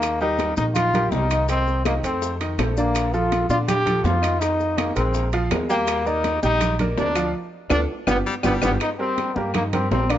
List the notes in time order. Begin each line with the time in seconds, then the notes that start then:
Already playing: D#2 D#3 A#3 D#4 D#5
0.02 high bongo, high conga, high timbale, claves, maracas
0.21 G3 D#4 G4 A#4, high conga, maracas
0.39 high bongo, high conga, high timbale, low timbale, maracas
0.57 A#1 D#3 D#4 D#5, high bongo, high conga, maracas
0.75 F4, high bongo, high conga, low conga, high timbale, claves, maracas
0.94 G3 G4 A#4, high bongo, high conga, low conga, high timbale, maracas
1.12 C2 D#4, high bongo, low bongo, high conga, low timbale, maracas
1.30 D#3 D#4 D#5, high conga, high timbale, claves, maracas
1.48 D#3 C4 D#4 D#5, high bongo, high timbale, maracas
1.67 high bongo, high conga, maracas
1.85 D#3 A#3 D#4 D#5, high bongo, high conga, high timbale, low timbale, claves, maracas
2.03 F2 A3 C4 A4 C5, high bongo, high conga, high timbale, maracas
2.22 high bongo, high conga, maracas
2.40 D#3 D#4 D#5, high bongo, high conga, high timbale, maracas
2.58 A#1 A3 A4 C5, high bongo, low bongo, high conga, high timbale, low timbale, claves, maracas
2.77 D3 A#3 D4 D5, maracas
2.95 high bongo, high conga, high timbale, claves, maracas
3.14 F3 F4 A4, high bongo, high conga, maracas
3.32 high bongo, high conga, high timbale, low timbale, maracas
3.49 A#2 D3 D4 F4 D5, high bongo, high conga, maracas
3.68 G4, high bongo, high conga, low conga, high timbale, claves, maracas
3.86 F3 F4 A4, high bongo, high conga, low conga, high timbale, maracas
4.04 F2 F4, high bongo, low bongo, high conga, low timbale, maracas
4.22 D#3 D#4 D#5, high conga, high timbale, claves, maracas
4.40 D#3 D#4 D#5, high bongo, high conga, high timbale, maracas
4.60 high bongo, high conga, maracas
4.77 D#3 A#3 D#4 D#5, high bongo, high conga, high timbale, low timbale, claves, maracas
4.96 A#1 G#3 C4 G#4 A#4, high bongo, high conga, high timbale, maracas
5.14 high bongo, high conga, maracas
5.32 F3 F4 F5, high bongo, high conga, high timbale, maracas
5.51 D#2 G#3 G#4 A#4, high bongo, low bongo, high conga, high timbale, low timbale, claves, maracas
5.70 G3 A#3 G4 G5, maracas
5.87 high bongo, high conga, high timbale, claves, maracas
6.06 A#3 D#4 A#4 D5, high bongo, high conga, maracas
6.24 high bongo, high conga, high timbale, low timbale, maracas
6.43 A#1 G3 D#4 G4 G5, high bongo, high conga, maracas
6.60 high bongo, high conga, low conga, high timbale, claves, maracas
6.79 A#3 A#4 D5, high bongo, high conga, low conga, high timbale, maracas
6.97 D2 D4, high bongo, low bongo, high conga, low timbale, maracas
7.15 F3 F4 F5, high conga, high timbale, claves, maracas
7.70 D2 D4 F4 A4, low bongo, high conga, high timbale, claves, maracas
8.07 G1 B3 D4 F4 G4, low bongo, high conga, high timbale, claves, maracas
8.26 G3
8.43 G1 G3 B3 D4 F4 G4, low bongo, high conga, high timbale, claves, maracas
8.62 G1 B3 D4 F4 G4, low bongo, high conga, high timbale, claves, maracas
8.80 D#4, high bongo, high timbale, claves
8.99 G3 C4 G4 A#4, high bongo, high conga
9.18 high bongo, high conga, high timbale, low timbale
9.36 G2 G3 A#3 G4 A#4, high bongo, high conga
9.54 D#3 A#3 D#4 D#5, high bongo, high conga, low conga, high timbale, claves
9.73 G3 C4 G4 A#4, high bongo, high conga, low conga, high timbale
9.91 A#1 C4, high bongo, low bongo, high conga, low timbale
10.09 D3 A#3 D4 D5, high conga, high timbale, claves